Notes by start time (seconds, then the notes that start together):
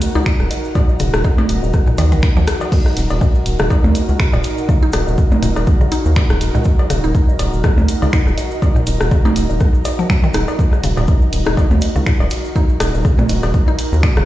Already playing: D#4 F#4 A#4 F#5
0.01 closed hi-hat, cabasa
0.15 C#2 D#4, cowbell, cabasa, low woodblock
0.26 finger snap, kick, cabasa
0.39 D#1, cross-stick, cabasa
0.51 closed hi-hat, cabasa, low woodblock
0.65 cabasa
0.75 A#2, kick, cowbell, cabasa
0.89 cabasa, low woodblock
1.00 D#1 C#3, closed hi-hat, cabasa
1.14 D#1, cross-stick, cabasa
1.24 D#4, kick, cabasa, low woodblock
1.38 cowbell, percussion blips, cabasa
1.49 D#1, closed hi-hat, cabasa
1.63 D#1, cabasa, low woodblock
1.73 kick, cross-stick, cabasa
1.87 A#2, cabasa
1.98 D#2 D#3, closed hi-hat, cowbell, cabasa, low woodblock
2.12 A#1 D#3, closed hi-hat, cabasa
2.23 finger snap, kick, closed hi-hat, cabasa
2.37 D#2 F3, cabasa, low woodblock
2.47 cross-stick, closed hi-hat, cabasa
2.61 cowbell, cabasa
2.72 D#4, kick, crash, cabasa
2.86 cross-stick, cabasa, low woodblock
2.97 D#1, closed hi-hat, cabasa
3.10 D#1, cowbell, cabasa
3.21 A#2, kick, cabasa, low woodblock
3.35 cabasa
3.46 D#1, closed hi-hat, cabasa
3.59 D#1 C#3, cross-stick, cabasa, low woodblock
3.70 D#4, kick, cowbell, cabasa
3.84 D#2, percussion blips, cabasa
3.95 closed hi-hat, cabasa, low woodblock
4.09 C#2, cabasa
4.20 finger snap, kick, cross-stick, cabasa
4.33 D#1 A#2, cowbell, cabasa, low woodblock
4.44 closed hi-hat, cabasa
4.58 cabasa
4.69 C#3, kick, cabasa, low woodblock
4.82 D#4, cabasa
4.92 D#1, cross-stick, closed hi-hat, cowbell, cabasa
5.07 D#1, cabasa, low woodblock
5.18 kick, cabasa
5.32 percussion blips, cabasa
5.43 D#1 A#2, closed hi-hat, cabasa, low woodblock
5.56 D#1, cross-stick, cowbell, cabasa
5.67 kick, cabasa
5.81 C#3, cabasa, low woodblock
5.92 D#4, closed hi-hat, cabasa
6.05 D#2, cabasa
6.16 finger snap, kick, cowbell, cabasa, low woodblock
6.30 D#1, cross-stick, cabasa
6.41 closed hi-hat, cabasa
6.55 C#2 A#2, cabasa, low woodblock
6.64 kick, cabasa
6.79 cowbell, cabasa
6.90 D#1 C#3, cross-stick, closed hi-hat, cabasa, low woodblock
7.04 D#1 D#4, cabasa
7.15 kick, cabasa
7.29 cabasa, low woodblock
7.39 D#1, closed hi-hat, cowbell, cabasa
7.53 D#1, cabasa
7.64 A#2, kick, cross-stick, cabasa, low woodblock
7.78 D#2, percussion blips, cabasa
7.88 closed hi-hat, cabasa
8.02 C#2 C#3, cowbell, cabasa, low woodblock
8.13 D#4, finger snap, kick, cabasa
8.27 D#1, cross-stick, cabasa
8.38 closed hi-hat, cabasa, low woodblock
8.51 cabasa
8.62 kick, cowbell, cabasa
8.76 A#2, cabasa, low woodblock
8.87 D#1, closed hi-hat, cabasa
9.01 D#1, cross-stick, cabasa
9.11 C#3, kick, cabasa, low woodblock
9.25 D#4, cowbell, percussion blips, cabasa
9.36 D#1, closed hi-hat, cabasa
9.50 D#1, cabasa, low woodblock
9.60 kick, cross-stick, cabasa
9.74 cabasa
9.85 closed hi-hat, cowbell, cabasa, low woodblock
9.99 F3, cabasa
10.10 F#3, finger snap, kick, closed hi-hat, cabasa
10.24 D#3, cabasa, low woodblock
10.34 D#1 D#4, cross-stick, closed hi-hat, cabasa
10.48 cowbell, cabasa
10.59 kick, cabasa
10.73 cross-stick, cabasa, low woodblock
10.84 D#1 C#3, closed hi-hat, ride, cabasa
10.97 D#1 A#2, cowbell, cabasa
11.08 kick, cabasa, low woodblock
11.22 cabasa
11.33 D#1, closed hi-hat, ride, cabasa
11.45 D#1 D#4, cross-stick, cabasa, low woodblock
11.57 kick, cowbell, cabasa
11.71 D#2, percussion blips, cabasa
11.81 closed hi-hat, ride, cabasa, low woodblock
11.96 C#2 C#3, cabasa
12.06 A#2, finger snap, kick, cross-stick, cabasa
12.20 D#1, cowbell, cabasa, low woodblock
12.30 closed hi-hat, ride, cabasa
12.45 cabasa
12.56 D#4, kick, cabasa, low woodblock
12.69 cabasa
12.80 D#1, cross-stick, closed hi-hat, ride, cowbell, cabasa
12.94 D#1, cabasa, low woodblock
13.05 C#3, kick, cabasa
13.19 A#2, percussion blips, cabasa
13.29 D#1, closed hi-hat, ride, cabasa, low woodblock
13.43 D#1, cross-stick, cowbell, cabasa
13.54 kick, cabasa
13.68 D#4, cabasa, low woodblock
13.79 closed hi-hat, ride, cabasa
13.92 D#2, cabasa
14.03 finger snap, kick, cowbell, cabasa, low woodblock
14.16 D#1 C#3, cross-stick, cabasa